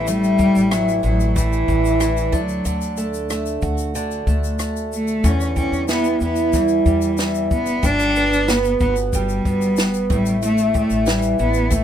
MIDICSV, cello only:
0, 0, Header, 1, 2, 480
1, 0, Start_track
1, 0, Tempo, 647249
1, 49, Time_signature, 4, 2, 24, 8
1, 8779, End_track
2, 0, Start_track
2, 0, Title_t, "Cello"
2, 0, Program_c, 0, 42
2, 54, Note_on_c, 0, 55, 114
2, 532, Note_on_c, 0, 54, 101
2, 543, Note_off_c, 0, 55, 0
2, 756, Note_off_c, 0, 54, 0
2, 760, Note_on_c, 0, 54, 88
2, 1007, Note_on_c, 0, 52, 91
2, 1018, Note_off_c, 0, 54, 0
2, 1735, Note_on_c, 0, 54, 83
2, 1746, Note_off_c, 0, 52, 0
2, 2212, Note_off_c, 0, 54, 0
2, 3664, Note_on_c, 0, 57, 82
2, 3900, Note_on_c, 0, 61, 88
2, 3911, Note_off_c, 0, 57, 0
2, 4131, Note_off_c, 0, 61, 0
2, 4136, Note_on_c, 0, 61, 82
2, 4355, Note_off_c, 0, 61, 0
2, 4376, Note_on_c, 0, 59, 91
2, 4595, Note_off_c, 0, 59, 0
2, 4613, Note_on_c, 0, 59, 89
2, 4863, Note_on_c, 0, 55, 85
2, 4874, Note_off_c, 0, 59, 0
2, 5575, Note_off_c, 0, 55, 0
2, 5584, Note_on_c, 0, 59, 95
2, 5820, Note_on_c, 0, 62, 112
2, 5832, Note_off_c, 0, 59, 0
2, 6301, Note_on_c, 0, 59, 95
2, 6312, Note_off_c, 0, 62, 0
2, 6523, Note_off_c, 0, 59, 0
2, 6528, Note_on_c, 0, 59, 91
2, 6636, Note_off_c, 0, 59, 0
2, 6773, Note_on_c, 0, 55, 98
2, 7461, Note_off_c, 0, 55, 0
2, 7509, Note_on_c, 0, 55, 84
2, 7723, Note_off_c, 0, 55, 0
2, 7745, Note_on_c, 0, 57, 97
2, 7960, Note_off_c, 0, 57, 0
2, 7980, Note_on_c, 0, 57, 86
2, 8217, Note_on_c, 0, 55, 85
2, 8228, Note_off_c, 0, 57, 0
2, 8453, Note_off_c, 0, 55, 0
2, 8458, Note_on_c, 0, 59, 85
2, 8694, Note_on_c, 0, 57, 98
2, 8705, Note_off_c, 0, 59, 0
2, 8779, Note_off_c, 0, 57, 0
2, 8779, End_track
0, 0, End_of_file